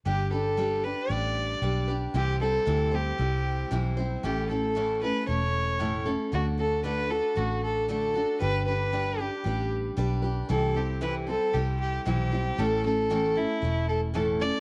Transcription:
X:1
M:4/4
L:1/8
Q:1/4=115
K:G
V:1 name="Fiddle"
G A2 B d3 z | G A2 G3 z2 | G A2 B ^c3 z | F A B A F A A2 |
B B2 G2 z3 | A G B A G G G2 | A A2 E2 A A d |]
V:2 name="Steel-string acoustic guitar"
[G,DGB] [DGB] [G,DGB] [DGB] [G,DGB]2 [G,DGB] [DGB] | [C,E,G,CEc] [G,CEc] [C,E,G,CEc] [G,CEc] [G,CEc]2 [C,E,G,CEc] [G,CEc] | [A,,E,A,^CEA] [A,CEA] [A,,E,A,CEA] [A,CEA] [A,CEA]2 [A,,E,A,CEA] [A,CEA] | [D,A,DFA] [DFA] [D,A,DFA] [DFA] [A,DFA]2 [D,A,DFA] [DFA] |
[G,DGB] [DGB] [G,DGB] [DGB] [G,DGB]2 [G,DGB] [DGB] | [C,E,G,CEc] [G,CEc] [C,E,G,CEc] [G,CEc] [G,CEc]2 [C,E,G,CEc] [G,CEc] | [A,,E,A,^CEA] [A,CEA] [A,,E,A,CEA] [A,CEA] [A,CEA]2 [A,,E,A,CEA] [A,CEA] |]
V:3 name="Fingered electric bass" clef=bass
G,,,4 A,,,2 B,,,2 | C,,2 D,,2 C,,2 B,,,2 | A,,,4 E,,,4 | D,,4 A,,,4 |
G,,,4 A,,,2 B,,,2 | C,,4 C,,2 B,,,2 | A,,,4 E,,,4 |]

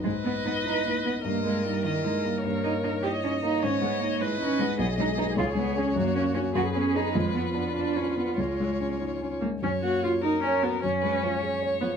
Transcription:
X:1
M:6/8
L:1/8
Q:3/8=101
K:G#m
V:1 name="Violin"
d6 | d3 d3 | c6 | d3 d3 |
[K:F#] d3 c3- | c3 B3- | B6 | c4- c z |
c3 A3 | c B c4 |]
V:2 name="Viola"
B6 | A6- | A3 d3 | c3 B3 |
[K:F#] G6 | F3 G3 | =F6- | =F4- F A, |
C F E D C B, | C4 z B, |]
V:3 name="Grand piano"
G,, B, D E D B, | =G,, A, D E D A, | =G,, A, D E D A, | G,, G, D E D G, |
[K:F#] B,,, G, [DB] C,, G, [CG] | F,, A, [CF] F,, B, [DG] | =F,, _C =D =F D C | C,, G, C D C G, |
F,, A, F A c F | F,, G, E G c E |]
V:4 name="Cello"
G, B, B, D A, B, | A, G, =G, D, ^G, =G, | A, D D =G C D | C B, A, G, C B, |
[K:F#] B, D D E B, C | A, C C F C D | _A, _C C =D ^C _C | G,3 z3 |
z2 A, z2 A, | z2 E, z2 E, |]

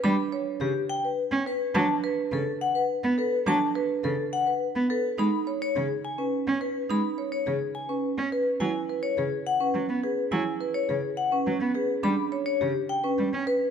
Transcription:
X:1
M:3/4
L:1/16
Q:1/4=105
K:E
V:1 name="Vibraphone"
b z3 =G z =g B z2 B z | a z3 A z f B z2 B z | a z3 A z f B z2 B z | b z2 c G z g B z2 B z |
b z2 c G z g B z2 B z | g z2 c G z f B z2 B z | g z2 c G z f B z2 B z | b z2 c =G z =g B z2 B z |]
V:2 name="Marimba"
=D z c z6 z B z | =D z B z6 z A z | =D z B z6 z A z | D z c z4 C z2 B z |
D z c z4 C z2 B z | E z B z4 C z2 G z | E z B z4 C z2 G z | =D z c z4 C z2 B z |]
V:3 name="Cello" clef=bass
=G, z3 C, z4 C z2 | F, z3 C, z4 B, z2 | F, z3 C, z4 B, z2 | G, z3 C, z4 C z2 |
G, z3 C, z4 C z2 | F, z3 C, z3 F, B, z2 | F, z3 C, z3 F, B, z2 | =G, z3 C, z3 G, C z2 |]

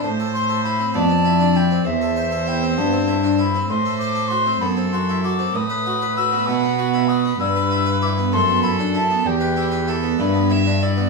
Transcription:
X:1
M:12/8
L:1/16
Q:3/8=65
K:Am
V:1 name="Flute"
a2 c'2 b2 a4 g2 e4 g2 a4 b2 | [K:Em] c'2 d'2 c'2 b2 c'2 d'2 ^d'4 e'2 f4 d'2 | e'4 d'2 c'2 b2 a2 g4 z8 |]
V:2 name="Violin"
c6 d6 c12 | [K:Em] c6 A6 B12 | B6 A6 G2 G2 A2 B2 e2 d2 |]
V:3 name="Harpsichord"
z A c A E C B, C E D E C z A c A E C B, C E D E C | [K:Em] z A c A F C B, C F E F C z B F B F B, A, B, F E F B, | z B E B E B, A, B, E D E B, z B E B E B, A, B, E D E B, |]
V:4 name="Harpsichord" clef=bass
A,,6 F,,6 E,,6 G,,6 | [K:Em] A,,6 F,,6 A,,6 B,,6 | G,,6 F,,6 E,,6 G,,6 |]
V:5 name="Cello" clef=bass
A,,6 F,,6 E,,6 G,,6 | [K:Em] A,,6 F,,6 A,,6 B,,6 | G,,6 F,,6 E,,6 G,,6 |]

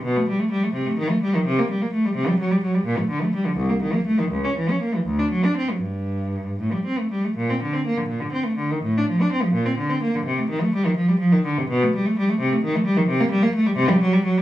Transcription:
X:1
M:6/8
L:1/16
Q:3/8=84
K:Cdor
V:1 name="Cello" clef=bass
=B,, A, G, A, G, A, C, A, E, A, G, E, | [K:Gm] C, B, G, B, A, G, C, G, ^F, G, F, G, | B,, A, D, A, G, D, C,, B, E, B, A, E, | ^C,, ^C =E, C ^A, E, D,, D ^F, D =C F, |
G,,6 A,, G, C A, G, A, | [K:Bb] B,, C D, C B, D, B,, D, C A, D, E, | A,, D F, D C F, B,, C D, C B, D, | C, A, E, A, G, E, F, G, F, E, D, C, |
=B,, A, G, A, G, A, C, A, E, A, G, E, | [K:Gm] C, B, G, B, A, G, C, G, ^F, G, F, G, |]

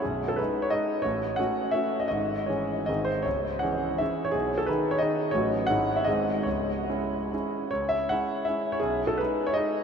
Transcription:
X:1
M:3/4
L:1/16
Q:1/4=166
K:C#m
V:1 name="Grand piano"
G3 A B3 c d4 | c4 f4 e3 d | d4 c4 d2 ^B2 | c4 f4 e3 c |
G3 A B3 c d4 | c4 f3 e d4 | c8 z4 | c2 e2 f4 e3 c |
G3 A B3 c d4 |]
V:2 name="Grand piano" clef=bass
[B,,,,B,,,]4 [G,D]4 [G,D]4 | [A,,,A,,]4 [A,CF]4 [A,CF]4 | [G,,,G,,]4 [E,CG]4 [G,,,G,,D,^B,G]4 | [C,,,C,,]4 [E,CG]4 [E,CG]4 |
[B,,,B,,]4 [D,DG]4 [D,DG]4 | [A,,,A,,F,CF]4 [G,,,G,,G,CE]4 [G,,,G,,G,^B,D]4 | [C,,,C,,]4 [G,CE]4 [G,CE]4 | C,,4 [G,CE]4 [G,CE]4 |
B,,,4 [G,D]4 [G,D]4 |]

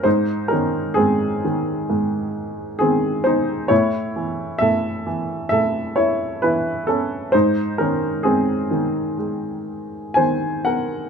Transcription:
X:1
M:4/4
L:1/8
Q:1/4=66
K:Abmix
V:1 name="Upright piano"
[Ec] [DB] [CA]4 [CA] [Ec] | [=E^c]2 [=A=e]2 [Ae] [Ec] [E_c] [^CA] | [Ec] [DB] [CA]4 [ca] [Bg] |]
V:2 name="Upright piano" clef=bass
A,, E, A,, E, A,,2 E,2 | =A,, =E, A,, E, A,,2 E,2 | A,, E, A, E, A,2 E,2 |]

